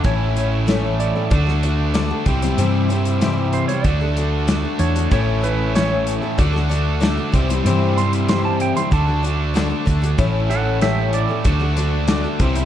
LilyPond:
<<
  \new Staff \with { instrumentName = "Tonewheel organ" } { \time 4/4 \key d \major \tempo 4 = 95 << { <e'' cis'''>2 <d'' fis'' d'''>4. <e'' g'' e'''>8~ | <e'' g'' e'''>2 <d' fis'' a''>2 | <cis'' e'' cis'''>2 <d'' fis'' d'''>4. <c'' e'' c'''>8~ | <c'' e'' c'''>2 <d'' fis'' d'''>2 |
<e'' cis'''>2 <d'' fis'' d'''>4. <c'' e'' c'''>8 | } \\ { a'2.~ a'8 c''8~ | c''2 a'2~ | a'2.~ a'8 g'8~ | g'2 a'2~ |
a'2.~ a'8 g'8 | } >> }
  \new Staff \with { instrumentName = "Electric slide guitar" } { \time 4/4 \key d \major cis''4. d''2 r8 | r4. c''16 cis''16 d''4. cis''8 | cis''8 b'8 cis''8 r2 r8 | r8 c'''16 r16 c'''16 a''16 g''16 c'''16 a''8 r4. |
r8 <a' fis''>8 <g' e''>8 d''8 r2 | }
  \new Staff \with { instrumentName = "Twelve-string acoustic guitar" } { \time 4/4 \key d \major <a, e a cis' e' a'>8 <a cis' e' a'>8 <a, e a cis' e' a'>8. <a cis' e' a'>16 <d a d' fis' a'>16 <d' fis' a'>16 <a d' fis' a'>8 <d a d' fis' a'>16 <d' fis' a'>16 <g c' e' c''>16 <g c' e' c''>16 | <c e g c' e' c''>8 <g c' e' c''>8 <c e g c' e' c''>8. <g c' e' c''>16 <d a d' fis' a'>16 <d' fis' a'>16 <a d' fis' a'>8 <d a d' fis' a'>16 <d' fis' a'>16 <a d' fis' a'>16 <d' fis' a'>16 | <a, e a cis' e' a'>8 <a cis' e' a'>8 <a, e a cis' e' a'>8. <a cis' e' a'>16 <d a d' fis' a'>16 <d' fis' a'>16 <a d' fis' a'>8 <d a d' fis' a'>16 <d' fis' a'>16 <g c' e' c''>16 <g c' e' c''>16 | <c e g c' e' c''>8 <g c' e' c''>8 <c e g c' e' c''>8. <g c' e' c''>16 <d a d' fis' a'>16 <d' fis' a'>16 <a d' fis' a'>8 <d a d' fis' a'>16 <d' fis' a'>16 <a d' fis' a'>16 <d' fis' a'>16 |
<a, e a cis' e' a'>8 <a cis' e' a'>8 <a, e a cis' e' a'>8. <a cis' e' a'>16 <d a d' fis' a'>16 <d' fis' a'>16 <a d' fis' a'>8 <d a d' fis' a'>16 <d' fis' a'>16 <g c' e' c''>16 <g c' e' c''>16 | }
  \new Staff \with { instrumentName = "Overdriven electric guitar" } { \time 4/4 \key d \major <a, e a cis' e'>2 <d a d' fis'>4. <c e g c' g'>8~ | <c e g c' g'>2 <d a d' fis'>2 | <a, e a cis' e'>2 <d a d' fis'>4. <c e g c' g'>8~ | <c e g c' g'>2 <d a d' fis'>2 |
<a, e a cis' e'>2 <d a d' fis'>4. <c e g c' e'>8 | }
  \new Staff \with { instrumentName = "Fingered electric bass" } { \clef bass \time 4/4 \key d \major a,,2 d,4. c,8 | g,2 d,4. e,8 | a,,2 d,4. c,8 | g,2 d,4. d,8 |
a,,2 d,4. c,8 | }
  \new DrumStaff \with { instrumentName = "Drums" } \drummode { \time 4/4 <hh bd>8 hh8 <hh sn>8 hh8 <hh bd>16 sn16 hh8 <hh sn>8 <hh bd>16 hh16 | hh8 hh16 hh16 <hh sn>8 hh16 hh16 <hh bd>8 hh8 <hh sn>8 hh16 hh16 | <hh bd>8 hh8 <hh sn>8 hh8 <hh bd>16 sn16 hh8 <hh sn>8 <hh bd>16 hh16 | hh8 hh16 hh16 <hh sn>8 hh16 hh16 <hh bd>8 hh8 <hh sn>8 <hh bd>16 hh16 |
<hh bd>8 hh8 <hh sn>8 hh8 <hh bd>8 hh8 <hh sn>8 <hh bd>16 hh16 | }
>>